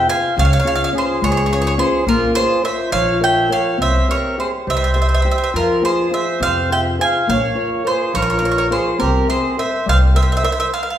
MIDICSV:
0, 0, Header, 1, 5, 480
1, 0, Start_track
1, 0, Tempo, 568182
1, 305, Time_signature, 6, 3, 24, 8
1, 2223, Tempo, 579710
1, 9136, End_track
2, 0, Start_track
2, 0, Title_t, "Mandolin"
2, 0, Program_c, 0, 25
2, 81, Note_on_c, 0, 80, 94
2, 297, Note_off_c, 0, 80, 0
2, 332, Note_on_c, 0, 77, 84
2, 370, Note_off_c, 0, 77, 0
2, 380, Note_on_c, 0, 77, 62
2, 436, Note_off_c, 0, 77, 0
2, 448, Note_on_c, 0, 77, 73
2, 493, Note_off_c, 0, 77, 0
2, 503, Note_on_c, 0, 77, 61
2, 559, Note_off_c, 0, 77, 0
2, 569, Note_on_c, 0, 77, 77
2, 623, Note_off_c, 0, 77, 0
2, 638, Note_on_c, 0, 77, 76
2, 687, Note_off_c, 0, 77, 0
2, 712, Note_on_c, 0, 77, 74
2, 754, Note_off_c, 0, 77, 0
2, 829, Note_on_c, 0, 72, 64
2, 1044, Note_off_c, 0, 72, 0
2, 1047, Note_on_c, 0, 73, 87
2, 1097, Note_off_c, 0, 73, 0
2, 1114, Note_on_c, 0, 73, 64
2, 1149, Note_off_c, 0, 73, 0
2, 1159, Note_on_c, 0, 73, 63
2, 1214, Note_off_c, 0, 73, 0
2, 1235, Note_on_c, 0, 73, 57
2, 1280, Note_off_c, 0, 73, 0
2, 1290, Note_on_c, 0, 73, 72
2, 1341, Note_off_c, 0, 73, 0
2, 1366, Note_on_c, 0, 73, 63
2, 1400, Note_off_c, 0, 73, 0
2, 1410, Note_on_c, 0, 73, 72
2, 1462, Note_off_c, 0, 73, 0
2, 1514, Note_on_c, 0, 72, 79
2, 1730, Note_off_c, 0, 72, 0
2, 1762, Note_on_c, 0, 70, 86
2, 1976, Note_off_c, 0, 70, 0
2, 1988, Note_on_c, 0, 72, 100
2, 2209, Note_off_c, 0, 72, 0
2, 2237, Note_on_c, 0, 76, 75
2, 2452, Note_off_c, 0, 76, 0
2, 2465, Note_on_c, 0, 77, 100
2, 2687, Note_off_c, 0, 77, 0
2, 2725, Note_on_c, 0, 79, 87
2, 2937, Note_off_c, 0, 79, 0
2, 2963, Note_on_c, 0, 77, 77
2, 3176, Note_off_c, 0, 77, 0
2, 3205, Note_on_c, 0, 76, 76
2, 3420, Note_off_c, 0, 76, 0
2, 3446, Note_on_c, 0, 73, 74
2, 3661, Note_off_c, 0, 73, 0
2, 3686, Note_on_c, 0, 72, 54
2, 3749, Note_off_c, 0, 72, 0
2, 3936, Note_on_c, 0, 76, 81
2, 3981, Note_off_c, 0, 76, 0
2, 3991, Note_on_c, 0, 76, 63
2, 4040, Note_off_c, 0, 76, 0
2, 4052, Note_on_c, 0, 76, 60
2, 4101, Note_off_c, 0, 76, 0
2, 4135, Note_on_c, 0, 76, 46
2, 4174, Note_off_c, 0, 76, 0
2, 4198, Note_on_c, 0, 76, 56
2, 4237, Note_off_c, 0, 76, 0
2, 4257, Note_on_c, 0, 76, 40
2, 4294, Note_off_c, 0, 76, 0
2, 4304, Note_on_c, 0, 76, 59
2, 4350, Note_off_c, 0, 76, 0
2, 4367, Note_on_c, 0, 76, 48
2, 4412, Note_off_c, 0, 76, 0
2, 4445, Note_on_c, 0, 76, 55
2, 4482, Note_off_c, 0, 76, 0
2, 4499, Note_on_c, 0, 76, 46
2, 4536, Note_off_c, 0, 76, 0
2, 4546, Note_on_c, 0, 76, 64
2, 4593, Note_off_c, 0, 76, 0
2, 4650, Note_on_c, 0, 70, 74
2, 4866, Note_off_c, 0, 70, 0
2, 4887, Note_on_c, 0, 72, 78
2, 5105, Note_off_c, 0, 72, 0
2, 5126, Note_on_c, 0, 76, 65
2, 5345, Note_off_c, 0, 76, 0
2, 5366, Note_on_c, 0, 77, 97
2, 5587, Note_off_c, 0, 77, 0
2, 5612, Note_on_c, 0, 79, 74
2, 5675, Note_off_c, 0, 79, 0
2, 5850, Note_on_c, 0, 80, 78
2, 6066, Note_off_c, 0, 80, 0
2, 6085, Note_on_c, 0, 77, 77
2, 6561, Note_on_c, 0, 72, 68
2, 6570, Note_off_c, 0, 77, 0
2, 6776, Note_off_c, 0, 72, 0
2, 6791, Note_on_c, 0, 73, 80
2, 6843, Note_off_c, 0, 73, 0
2, 6853, Note_on_c, 0, 73, 70
2, 6906, Note_off_c, 0, 73, 0
2, 6916, Note_on_c, 0, 73, 60
2, 6975, Note_off_c, 0, 73, 0
2, 6989, Note_on_c, 0, 73, 58
2, 7033, Note_off_c, 0, 73, 0
2, 7043, Note_on_c, 0, 73, 61
2, 7085, Note_off_c, 0, 73, 0
2, 7094, Note_on_c, 0, 73, 55
2, 7140, Note_off_c, 0, 73, 0
2, 7150, Note_on_c, 0, 73, 63
2, 7213, Note_off_c, 0, 73, 0
2, 7265, Note_on_c, 0, 72, 72
2, 7485, Note_off_c, 0, 72, 0
2, 7493, Note_on_c, 0, 70, 66
2, 7719, Note_off_c, 0, 70, 0
2, 7742, Note_on_c, 0, 72, 72
2, 7963, Note_off_c, 0, 72, 0
2, 7987, Note_on_c, 0, 76, 63
2, 8206, Note_off_c, 0, 76, 0
2, 8236, Note_on_c, 0, 77, 90
2, 8299, Note_off_c, 0, 77, 0
2, 8458, Note_on_c, 0, 76, 78
2, 8501, Note_off_c, 0, 76, 0
2, 8511, Note_on_c, 0, 76, 53
2, 8572, Note_off_c, 0, 76, 0
2, 8590, Note_on_c, 0, 76, 63
2, 8618, Note_off_c, 0, 76, 0
2, 8628, Note_on_c, 0, 76, 69
2, 8683, Note_off_c, 0, 76, 0
2, 8693, Note_on_c, 0, 76, 70
2, 8747, Note_off_c, 0, 76, 0
2, 8757, Note_on_c, 0, 76, 54
2, 8810, Note_off_c, 0, 76, 0
2, 8820, Note_on_c, 0, 76, 72
2, 8879, Note_off_c, 0, 76, 0
2, 8934, Note_on_c, 0, 77, 70
2, 8993, Note_off_c, 0, 77, 0
2, 9010, Note_on_c, 0, 77, 47
2, 9063, Note_off_c, 0, 77, 0
2, 9072, Note_on_c, 0, 77, 52
2, 9125, Note_off_c, 0, 77, 0
2, 9136, End_track
3, 0, Start_track
3, 0, Title_t, "Accordion"
3, 0, Program_c, 1, 21
3, 75, Note_on_c, 1, 77, 76
3, 294, Note_off_c, 1, 77, 0
3, 319, Note_on_c, 1, 73, 80
3, 759, Note_off_c, 1, 73, 0
3, 799, Note_on_c, 1, 68, 76
3, 1013, Note_off_c, 1, 68, 0
3, 1045, Note_on_c, 1, 68, 85
3, 1479, Note_off_c, 1, 68, 0
3, 1511, Note_on_c, 1, 68, 82
3, 1728, Note_off_c, 1, 68, 0
3, 1736, Note_on_c, 1, 65, 82
3, 1962, Note_off_c, 1, 65, 0
3, 1993, Note_on_c, 1, 68, 61
3, 2212, Note_off_c, 1, 68, 0
3, 2234, Note_on_c, 1, 72, 66
3, 2450, Note_off_c, 1, 72, 0
3, 2465, Note_on_c, 1, 73, 94
3, 2687, Note_off_c, 1, 73, 0
3, 2710, Note_on_c, 1, 76, 69
3, 2929, Note_off_c, 1, 76, 0
3, 2949, Note_on_c, 1, 73, 84
3, 3169, Note_off_c, 1, 73, 0
3, 3195, Note_on_c, 1, 72, 77
3, 3415, Note_off_c, 1, 72, 0
3, 3427, Note_on_c, 1, 70, 55
3, 3651, Note_off_c, 1, 70, 0
3, 3673, Note_on_c, 1, 68, 63
3, 3781, Note_off_c, 1, 68, 0
3, 3910, Note_on_c, 1, 72, 80
3, 4600, Note_off_c, 1, 72, 0
3, 4652, Note_on_c, 1, 65, 66
3, 4867, Note_off_c, 1, 65, 0
3, 4887, Note_on_c, 1, 68, 53
3, 5104, Note_off_c, 1, 68, 0
3, 5135, Note_on_c, 1, 72, 73
3, 5350, Note_off_c, 1, 72, 0
3, 5373, Note_on_c, 1, 72, 88
3, 5591, Note_off_c, 1, 72, 0
3, 5620, Note_on_c, 1, 76, 71
3, 5723, Note_off_c, 1, 76, 0
3, 5862, Note_on_c, 1, 77, 72
3, 6072, Note_off_c, 1, 77, 0
3, 6101, Note_on_c, 1, 73, 79
3, 6531, Note_off_c, 1, 73, 0
3, 6577, Note_on_c, 1, 68, 62
3, 6785, Note_off_c, 1, 68, 0
3, 6806, Note_on_c, 1, 70, 76
3, 7240, Note_off_c, 1, 70, 0
3, 7262, Note_on_c, 1, 68, 66
3, 7483, Note_off_c, 1, 68, 0
3, 7498, Note_on_c, 1, 67, 74
3, 7722, Note_off_c, 1, 67, 0
3, 7745, Note_on_c, 1, 68, 60
3, 7964, Note_off_c, 1, 68, 0
3, 7977, Note_on_c, 1, 72, 66
3, 8201, Note_off_c, 1, 72, 0
3, 8223, Note_on_c, 1, 72, 89
3, 8330, Note_off_c, 1, 72, 0
3, 8460, Note_on_c, 1, 72, 68
3, 8906, Note_off_c, 1, 72, 0
3, 9136, End_track
4, 0, Start_track
4, 0, Title_t, "Nylon-string guitar"
4, 0, Program_c, 2, 24
4, 59, Note_on_c, 2, 65, 42
4, 65, Note_on_c, 2, 68, 34
4, 67, Note_on_c, 2, 72, 51
4, 254, Note_off_c, 2, 65, 0
4, 256, Note_off_c, 2, 68, 0
4, 258, Note_off_c, 2, 72, 0
4, 308, Note_on_c, 2, 49, 72
4, 545, Note_on_c, 2, 61, 50
4, 548, Note_on_c, 2, 65, 38
4, 551, Note_on_c, 2, 68, 52
4, 772, Note_off_c, 2, 49, 0
4, 772, Note_off_c, 2, 61, 0
4, 781, Note_off_c, 2, 65, 0
4, 782, Note_on_c, 2, 61, 39
4, 784, Note_off_c, 2, 68, 0
4, 790, Note_on_c, 2, 65, 36
4, 796, Note_on_c, 2, 68, 41
4, 1029, Note_on_c, 2, 56, 61
4, 1165, Note_off_c, 2, 61, 0
4, 1170, Note_off_c, 2, 65, 0
4, 1172, Note_off_c, 2, 68, 0
4, 1263, Note_on_c, 2, 61, 46
4, 1268, Note_on_c, 2, 65, 38
4, 1272, Note_on_c, 2, 68, 47
4, 1489, Note_off_c, 2, 56, 0
4, 1491, Note_off_c, 2, 61, 0
4, 1493, Note_off_c, 2, 65, 0
4, 1501, Note_off_c, 2, 68, 0
4, 1501, Note_on_c, 2, 61, 47
4, 1504, Note_on_c, 2, 65, 39
4, 1511, Note_on_c, 2, 68, 45
4, 1692, Note_off_c, 2, 61, 0
4, 1693, Note_off_c, 2, 65, 0
4, 1698, Note_off_c, 2, 68, 0
4, 1749, Note_on_c, 2, 58, 71
4, 1978, Note_on_c, 2, 65, 57
4, 1984, Note_on_c, 2, 70, 44
4, 1988, Note_on_c, 2, 73, 53
4, 2208, Note_off_c, 2, 65, 0
4, 2213, Note_off_c, 2, 70, 0
4, 2214, Note_off_c, 2, 58, 0
4, 2216, Note_off_c, 2, 73, 0
4, 2218, Note_on_c, 2, 65, 37
4, 2222, Note_on_c, 2, 70, 37
4, 2227, Note_on_c, 2, 73, 45
4, 2459, Note_on_c, 2, 53, 66
4, 2603, Note_off_c, 2, 65, 0
4, 2606, Note_off_c, 2, 70, 0
4, 2607, Note_off_c, 2, 73, 0
4, 2699, Note_on_c, 2, 65, 43
4, 2700, Note_on_c, 2, 70, 34
4, 2704, Note_on_c, 2, 73, 49
4, 2925, Note_off_c, 2, 53, 0
4, 2925, Note_off_c, 2, 70, 0
4, 2929, Note_off_c, 2, 65, 0
4, 2932, Note_off_c, 2, 73, 0
4, 2935, Note_on_c, 2, 70, 38
4, 2939, Note_on_c, 2, 65, 41
4, 2943, Note_on_c, 2, 73, 49
4, 3130, Note_off_c, 2, 70, 0
4, 3132, Note_off_c, 2, 65, 0
4, 3134, Note_off_c, 2, 73, 0
4, 3173, Note_on_c, 2, 60, 66
4, 3423, Note_on_c, 2, 67, 46
4, 3427, Note_on_c, 2, 72, 39
4, 3435, Note_on_c, 2, 76, 56
4, 3647, Note_off_c, 2, 60, 0
4, 3658, Note_off_c, 2, 67, 0
4, 3663, Note_off_c, 2, 72, 0
4, 3664, Note_off_c, 2, 76, 0
4, 3668, Note_on_c, 2, 67, 32
4, 3672, Note_on_c, 2, 72, 30
4, 3676, Note_on_c, 2, 76, 40
4, 3911, Note_on_c, 2, 55, 50
4, 4056, Note_off_c, 2, 67, 0
4, 4060, Note_off_c, 2, 72, 0
4, 4060, Note_off_c, 2, 76, 0
4, 4147, Note_on_c, 2, 67, 38
4, 4149, Note_on_c, 2, 72, 31
4, 4153, Note_on_c, 2, 76, 41
4, 4379, Note_off_c, 2, 67, 0
4, 4380, Note_off_c, 2, 55, 0
4, 4386, Note_off_c, 2, 72, 0
4, 4387, Note_off_c, 2, 76, 0
4, 4389, Note_on_c, 2, 67, 42
4, 4395, Note_on_c, 2, 72, 32
4, 4400, Note_on_c, 2, 76, 49
4, 4582, Note_off_c, 2, 67, 0
4, 4587, Note_off_c, 2, 72, 0
4, 4587, Note_off_c, 2, 76, 0
4, 4629, Note_on_c, 2, 53, 57
4, 4860, Note_on_c, 2, 65, 50
4, 4868, Note_on_c, 2, 68, 40
4, 4871, Note_on_c, 2, 72, 50
4, 5094, Note_off_c, 2, 65, 0
4, 5095, Note_off_c, 2, 68, 0
4, 5097, Note_off_c, 2, 53, 0
4, 5099, Note_off_c, 2, 72, 0
4, 5103, Note_on_c, 2, 65, 36
4, 5106, Note_on_c, 2, 68, 35
4, 5109, Note_on_c, 2, 72, 37
4, 5343, Note_on_c, 2, 48, 61
4, 5496, Note_off_c, 2, 65, 0
4, 5496, Note_off_c, 2, 68, 0
4, 5499, Note_off_c, 2, 72, 0
4, 5583, Note_on_c, 2, 65, 37
4, 5588, Note_on_c, 2, 68, 37
4, 5592, Note_on_c, 2, 72, 41
4, 5817, Note_off_c, 2, 48, 0
4, 5821, Note_off_c, 2, 65, 0
4, 5822, Note_off_c, 2, 68, 0
4, 5825, Note_off_c, 2, 72, 0
4, 5830, Note_on_c, 2, 65, 42
4, 5833, Note_on_c, 2, 68, 38
4, 5835, Note_on_c, 2, 72, 45
4, 6024, Note_off_c, 2, 65, 0
4, 6025, Note_off_c, 2, 68, 0
4, 6027, Note_off_c, 2, 72, 0
4, 6066, Note_on_c, 2, 58, 62
4, 6295, Note_on_c, 2, 65, 45
4, 6299, Note_on_c, 2, 70, 42
4, 6304, Note_on_c, 2, 73, 52
4, 6529, Note_off_c, 2, 65, 0
4, 6532, Note_off_c, 2, 58, 0
4, 6532, Note_off_c, 2, 70, 0
4, 6532, Note_off_c, 2, 73, 0
4, 6538, Note_on_c, 2, 65, 36
4, 6542, Note_on_c, 2, 73, 45
4, 6544, Note_on_c, 2, 70, 35
4, 6781, Note_on_c, 2, 53, 59
4, 6923, Note_off_c, 2, 65, 0
4, 6925, Note_off_c, 2, 70, 0
4, 6926, Note_off_c, 2, 73, 0
4, 7016, Note_on_c, 2, 65, 40
4, 7023, Note_on_c, 2, 70, 34
4, 7028, Note_on_c, 2, 73, 43
4, 7243, Note_off_c, 2, 65, 0
4, 7245, Note_off_c, 2, 53, 0
4, 7247, Note_off_c, 2, 70, 0
4, 7247, Note_off_c, 2, 73, 0
4, 7253, Note_on_c, 2, 65, 46
4, 7255, Note_on_c, 2, 70, 42
4, 7259, Note_on_c, 2, 73, 55
4, 7447, Note_off_c, 2, 65, 0
4, 7449, Note_off_c, 2, 70, 0
4, 7449, Note_off_c, 2, 73, 0
4, 7486, Note_on_c, 2, 60, 64
4, 7724, Note_on_c, 2, 70, 47
4, 7728, Note_on_c, 2, 72, 46
4, 7733, Note_on_c, 2, 76, 57
4, 7956, Note_off_c, 2, 60, 0
4, 7960, Note_off_c, 2, 70, 0
4, 7961, Note_off_c, 2, 72, 0
4, 7968, Note_off_c, 2, 76, 0
4, 7970, Note_on_c, 2, 70, 36
4, 7972, Note_on_c, 2, 72, 35
4, 7978, Note_on_c, 2, 76, 36
4, 8208, Note_on_c, 2, 55, 56
4, 8358, Note_off_c, 2, 70, 0
4, 8359, Note_off_c, 2, 72, 0
4, 8363, Note_off_c, 2, 76, 0
4, 8445, Note_on_c, 2, 70, 45
4, 8445, Note_on_c, 2, 72, 33
4, 8450, Note_on_c, 2, 76, 46
4, 8675, Note_off_c, 2, 70, 0
4, 8676, Note_off_c, 2, 72, 0
4, 8679, Note_off_c, 2, 55, 0
4, 8679, Note_off_c, 2, 76, 0
4, 8684, Note_on_c, 2, 70, 48
4, 8687, Note_on_c, 2, 72, 39
4, 8689, Note_on_c, 2, 76, 45
4, 8882, Note_off_c, 2, 70, 0
4, 8883, Note_off_c, 2, 72, 0
4, 8885, Note_off_c, 2, 76, 0
4, 9136, End_track
5, 0, Start_track
5, 0, Title_t, "Upright bass"
5, 0, Program_c, 3, 32
5, 317, Note_on_c, 3, 37, 98
5, 470, Note_off_c, 3, 37, 0
5, 1028, Note_on_c, 3, 37, 82
5, 1493, Note_off_c, 3, 37, 0
5, 1746, Note_on_c, 3, 34, 86
5, 1901, Note_off_c, 3, 34, 0
5, 2470, Note_on_c, 3, 34, 91
5, 2936, Note_off_c, 3, 34, 0
5, 3179, Note_on_c, 3, 36, 81
5, 3338, Note_off_c, 3, 36, 0
5, 3911, Note_on_c, 3, 36, 69
5, 4381, Note_off_c, 3, 36, 0
5, 4632, Note_on_c, 3, 41, 71
5, 4789, Note_off_c, 3, 41, 0
5, 5347, Note_on_c, 3, 41, 85
5, 5819, Note_off_c, 3, 41, 0
5, 6080, Note_on_c, 3, 34, 91
5, 6234, Note_off_c, 3, 34, 0
5, 6797, Note_on_c, 3, 34, 86
5, 7257, Note_off_c, 3, 34, 0
5, 7508, Note_on_c, 3, 36, 81
5, 7661, Note_off_c, 3, 36, 0
5, 8221, Note_on_c, 3, 36, 86
5, 8689, Note_off_c, 3, 36, 0
5, 9136, End_track
0, 0, End_of_file